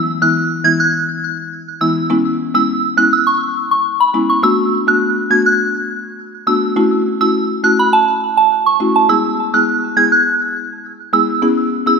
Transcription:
0.00 0.18 E3 medium
0.00 0.18 G#3 medium
0.00 0.18 B3 medium
0.00 0.18 E4 loud
0.22 0.61 E3 medium
0.22 0.61 G#3 medium
0.22 0.61 B3 medium
0.22 0.61 E4 medium
0.22 0.32 F#6 medium
0.64 0.91 E3 medium
0.64 0.92 G#3 medium
0.64 0.92 B3 medium
0.64 0.92 E4 medium
0.64 0.76 G#6 medium
0.80 0.90 F#6 medium
1.81 1.95 E3 medium
1.81 1.95 G#3 medium
1.81 1.95 B3 medium
1.81 1.95 E4 medium
1.81 1.93 E6 medium
2.10 2.51 G#3 medium
2.10 2.51 B3 medium
2.10 2.51 C#4 medium
2.10 2.51 E4 loud
2.54 2.94 G#3 medium
2.54 2.94 B3 medium
2.54 2.94 C#4 medium
2.54 2.94 E4 medium
2.54 2.65 E6 medium
2.97 3.24 G#3 medium
2.97 3.24 B3 medium
2.97 3.25 C#4 medium
2.97 3.25 E4 medium
2.97 3.09 F#6 medium
3.13 3.23 E6 medium
3.27 3.38 C#6 medium
3.71 3.82 C#6 medium
4.00 4.11 B5 medium
4.14 4.28 G#3 medium
4.14 4.28 B3 medium
4.14 4.28 C#4 medium
4.14 4.28 E4 medium
4.30 4.40 C#6 medium
4.43 4.84 A3 medium
4.43 4.84 B3 medium
4.43 4.84 D4 medium
4.43 4.84 F#4 loud
4.43 4.55 E6 loud
4.88 5.27 A3 medium
4.88 5.27 B3 medium
4.88 5.27 D4 medium
4.88 5.27 F#4 medium
4.88 4.98 F#6 medium
5.30 5.57 A3 medium
5.30 5.57 B3 medium
5.30 5.58 D4 medium
5.30 5.58 F#4 medium
5.30 5.42 G#6 medium
5.46 5.56 F#6 medium
6.47 6.61 A3 medium
6.47 6.61 B3 medium
6.47 6.61 D4 medium
6.47 6.61 F#4 medium
6.47 6.59 E6 medium
6.76 7.17 A3 medium
6.76 7.17 C#4 medium
6.76 7.17 E4 medium
6.76 7.17 F#4 loud
7.21 7.60 A3 medium
7.21 7.60 C#4 medium
7.21 7.60 E4 medium
7.21 7.61 F#4 medium
7.21 7.31 E6 medium
7.63 7.90 A3 medium
7.63 7.91 C#4 medium
7.63 7.91 E4 medium
7.63 7.91 F#4 medium
7.63 7.75 F#6 medium
7.79 7.90 B5 medium
7.93 8.05 A5 medium
8.37 8.48 A5 medium
8.66 8.77 C#6 medium
8.80 8.94 A3 medium
8.80 8.94 C#4 medium
8.80 8.94 E4 medium
8.80 8.94 F#4 medium
8.96 9.06 A5 medium
9.09 9.50 G#3 medium
9.09 9.50 B3 medium
9.09 9.50 E4 medium
9.09 9.50 G#4 loud
9.09 9.21 E6 loud
9.54 9.93 G#3 medium
9.54 9.93 B3 medium
9.54 9.94 E4 medium
9.54 9.94 G#4 medium
9.54 9.64 F#6 medium
9.96 10.23 G#3 medium
9.96 10.24 B3 medium
9.96 10.24 E4 medium
9.96 10.24 G#4 medium
9.96 10.08 G#6 medium
10.12 10.22 F#6 medium
11.13 11.27 G#3 medium
11.13 11.27 B3 medium
11.13 11.27 E4 medium
11.13 11.27 G#4 medium
11.13 11.25 E6 medium
11.42 11.83 B3 medium
11.42 11.83 C#4 medium
11.42 11.83 E4 medium
11.42 11.83 G#4 loud
11.86 12.00 B3 medium
11.86 12.00 C#4 medium
11.86 12.00 E4 medium
11.86 12.00 G#4 medium
11.86 11.97 E6 medium

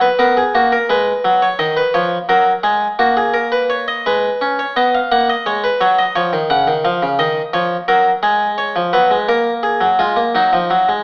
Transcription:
0.01 0.19 B4 medium
0.19 0.41 B3 medium
0.19 0.36 A#4 medium
0.37 0.54 G#4 medium
0.55 0.76 A#3 medium
0.55 0.72 F#4 medium
0.72 0.89 A#4 medium
0.90 1.11 G#3 medium
0.90 1.40 B4 medium
1.25 1.46 F#3 medium
1.42 1.59 C#5 medium
1.59 1.81 D#3 medium
1.59 1.76 D#5 medium
1.77 1.94 B4 medium
1.94 2.16 F3 medium
1.94 2.16 C#5 medium
2.29 2.51 F#3 medium
2.29 2.51 A#4 medium
2.63 2.86 G#3 medium
2.63 2.86 G#4 medium
2.99 4.02 A#3 medium
2.99 3.16 F#4 medium
3.17 3.34 G#4 medium
3.34 3.51 A#4 medium
3.52 3.69 B4 medium
3.70 3.87 C#5 medium
3.88 4.05 D#5 medium
4.06 4.28 G#3 medium
4.06 4.57 B4 medium
4.41 4.63 C#4 medium
4.59 4.76 C#5 medium
4.76 4.98 B3 medium
4.76 4.93 D#5 medium
4.95 5.11 F5 medium
5.12 5.33 A#3 medium
5.12 5.28 F#5 medium
5.30 5.46 D#5 medium
5.46 5.68 G#3 medium
5.46 5.63 C#5 medium
5.64 5.80 B4 medium
5.81 6.02 F#3 medium
5.81 5.98 C#5 medium
5.99 6.15 D#5 medium
6.16 6.32 F3 medium
6.16 6.37 C#5 medium
6.33 6.50 D#3 medium
6.50 6.67 C#3 medium
6.50 6.72 F#5 medium
6.67 6.84 D#3 medium
6.85 7.01 F3 medium
6.85 7.06 F5 medium
7.03 7.19 C#3 medium
7.19 7.41 D#3 medium
7.19 7.41 D#5 medium
7.53 7.75 F3 medium
7.53 7.75 C#5 medium
7.88 8.10 F#3 medium
7.88 8.10 A#4 medium
8.23 8.74 G#3 medium
8.23 8.45 G#4 medium
8.58 8.80 C#5 medium
8.76 8.93 F3 medium
8.93 9.10 F#3 medium
8.93 9.15 B4 medium
9.11 9.28 G#3 medium
9.28 9.80 A#3 medium
9.28 9.51 A#4 medium
9.63 9.85 G#4 medium
9.81 9.98 F#3 medium
9.99 10.17 G#3 medium
9.99 10.21 F4 medium
10.16 10.34 A#3 medium
10.35 10.52 F#3 medium
10.35 11.03 D#4 medium
10.53 10.70 F3 medium
10.70 10.88 F#3 medium
10.89 11.03 G#3 medium

